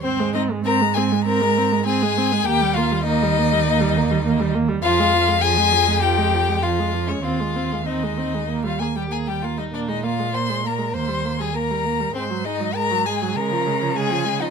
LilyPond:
<<
  \new Staff \with { instrumentName = "Violin" } { \time 4/4 \key aes \major \tempo 4 = 99 c''8 ees''8 bes''8 aes''8 bes''4 aes''4 | g''8 f''8 ees''2~ ees''8 r8 | f''4 aes''4 g''4 f''8. des''16 | f''4 ees''4~ ees''16 f''16 aes''16 g''16 aes''16 g''16 f''16 ees''16 |
d''16 ees''16 f''8 c'''8 bes''8 c'''8. aes''16 bes''4 | c''8 ees''8 bes''8 aes''8 bes''4 aes''8. ees''16 | }
  \new Staff \with { instrumentName = "Violin" } { \time 4/4 \key aes \major c'8 ees'8 bes'8 aes'8 bes'4 aes'4 | g'8 f'8 ees'2~ ees'8 r8 | f'4 aes'4 g'4 f'8. des'16 | f'4 ees'4~ ees'16 f'16 aes'16 g'16 aes'16 g'16 f'16 ees'16 |
d'16 ees'16 f'8 c''8 bes'8 c''8. aes'16 bes'4 | c'8 ees'8 bes'8 aes'8 bes'4 aes'8. ees'16 | }
  \new Staff \with { instrumentName = "Viola" } { \clef bass \time 4/4 \key aes \major c'16 aes16 c'16 aes16 c'16 aes16 c'16 aes16 c'16 aes16 c'16 aes16 c'16 aes16 c'16 aes16 | bes16 g16 bes16 g16 bes16 g16 bes16 g16 bes16 g16 bes16 g16 bes16 g16 bes16 g16 | f16 aes16 f16 aes16 f16 aes16 f16 aes16 f16 aes16 f16 aes16 f16 aes16 f16 aes16 | c'16 aes16 c'16 aes16 c'16 aes16 c'16 aes16 bes16 g16 bes16 g16 bes16 g16 bes16 g16 |
bes16 aes16 bes16 aes16 bes16 aes16 bes16 aes16 bes16 g16 bes16 g16 bes16 g16 bes16 g16 | aes16 ges16 aes16 ges16 aes16 ges16 aes16 ges16 aes16 f16 aes16 f16 aes16 f16 aes16 f16 | }
  \new Staff \with { instrumentName = "Cello" } { \clef bass \time 4/4 \key aes \major aes,1 | ees,1 | f,1 | ees,2.~ ees,8 r8 |
bes,2 ees,2 | aes,2 des2 | }
>>